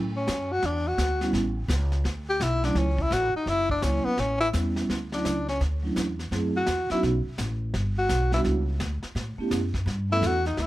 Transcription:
Already playing: A2
0.16 C#4
0.27 F#2, snare, hi-hat pedal
0.52 F#4
0.62 E2 D4, brush sweep, snare
0.88 F#4
0.98 D2, snare, hi-hat pedal
1.21 G3 B3 C#4 E4, snare
1.33 A1, brush sweep, snare
1.68 C#2, snare, hi-hat pedal
1.92 snare
2.04 D2, brush sweep, snare
2.29 G4
2.40 B1 E4, snare, hi-hat pedal
2.63 F#3 A3 C#4 D4 E4, snare
2.75 C#2 C#4, brush sweep, snare
2.98 E4, kick
3.11 A1 F#4, snare, hi-hat pedal
3.34 D#4, muted upright bass stroke
3.46 F#1 E4, brush sweep, snare
3.70 D4, kick
3.82 C#2 F#3 A#3 C#4 E4, snare, hi-hat pedal
4.05 B3, muted upright bass stroke
4.18 A1 C#4, brush sweep, snare
4.41 E4
4.53 E2 G3 B3 C#4 E4, snare, hi-hat pedal
4.76 snare
4.89 D2, brush sweep, snare
5.12 F#3 A3 C#4 D4 E4, snare
5.25 C#2, snare, hi-hat pedal
5.48 C#4, snare
5.60 D2, brush sweep, snare
5.83 F#3 A3 C#4 D4 E4
5.96 E2, snare, hi-hat pedal
6.19 snare
6.31 F#2 F#3 A3 C4 E4 G#4, brush sweep, snare
6.56 F#4
6.66 E2, snare, hi-hat pedal
6.90 F#3 B3 C#4 D#4 E4 F#4, muted upright bass stroke, snare
7.03 B1, brush sweep, snare
7.26 muted upright bass stroke
7.38 A1, snare, hi-hat pedal
7.74 G1, brush sweep, snare
7.98 F#4
8.09 B1, snare, hi-hat pedal
8.32 G3 B3 D4 E4 F#4, snare
8.44 C#2, brush sweep, snare
8.80 D2, snare, hi-hat pedal
9.03 muted upright bass stroke, snare
9.15 A2, brush sweep, snare
9.38 A3 B3 C#4 E4 G4, muted upright bass stroke
9.51 F#2, snare, hi-hat pedal
9.74 kick, snare
9.86 G2, brush sweep, snare
10.10 A3 B3 C#4 E4 A4
10.22 E2, snare, hi-hat pedal
10.27 F#4
10.45 D#4, snare
10.57 D2 E4, brush sweep, snare

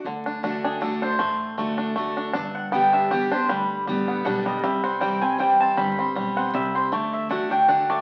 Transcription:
0.04 D2 D3
0.26 D4
0.43 D3 A3 D4 F#4
0.64 D4 G#4
0.81 D3 A3 D4 F#4 A4
1.02 D4 C5
1.19 A1 A2 A3
1.57 D3 A3 D4 F#4
1.78 D4
1.96 D3 A3 D4 F#4
2.17 D4
2.33 G1 G2 D4 D5
2.55 F#5
2.72 D3 G3 B3 G4 G5
2.93 D4 E5
3.10 D3 G3 B3 G4 D5
3.31 B3 D4 G4 C5
3.49 D2 D3 G3 B4
3.87 A1 D3 G3 B3 G4
4.08 B3
4.25 B1 D3 G3 B3 D4 G4 F#5
4.46 G3 D#5
4.63 C2 C3 G3 E5
4.84 C4 F#5
5.01 E3 G3 C4 E4 G5
5.21 C4 E4 G#5
5.38 E3 G3 C4 E4 G5
5.60 C4 A5
5.77 G1 G2 G3 B5
5.99 C4
6.15 B1 G3 B3
6.37 C4 F#5
6.54 C2 C3 G3 E5
6.75 C4 C5
6.92 D2 D3 A3 D5
7.13 E5
7.29 D3 A3 D4 F#4 F#5
7.49 D4 F#4 G5
7.68 D3 A3 D4 F#4 F#5
7.90 A3 D5

